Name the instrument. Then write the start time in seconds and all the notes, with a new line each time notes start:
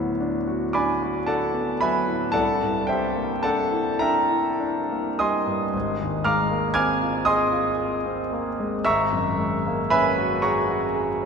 grand piano
Already playing: D2 A2 F#3 B3
0.20 D4
0.47 F#4
0.73 D4 D5 G#5 B5 D6
1.02 F#4
1.26 D4 A4 D5 F#5 A5
1.54 B3
1.81 F#3 B4 E5 G#5 B5
2.08 A2
2.32 C2 A4 D5 F#5 A5
2.62 G2
2.87 G3 G4 C5 E5 G5
3.16 A#3
3.43 D4 A4 D5 F#5 A5
3.71 E4
3.99 D4 A#4 E5 G5 A#5
4.30 E4
4.60 D4
4.91 A#3
5.19 G3 D#5 G#5 C6 D#6
5.46 G2
5.74 G#1
6.01 D#2
6.24 G#3 F5 A#5 D6 F6
6.51 A#3
6.74 C4 G#5 D6 F6 G#6
7.02 F4
7.25 G#4 D#5 G#5 C6 D#6
7.52 F4
7.78 G#4
8.06 C4
8.33 A#3
8.60 G#3
8.85 G#1 E5 A#5 C#6 E6
9.12 F#2
9.38 G#3
9.66 A#3
9.90 C#4 B4 E5 G#5 B5
10.18 F#4
10.42 G#4 C#5 F#5 A#5 C#6
10.68 F#4
10.95 G#4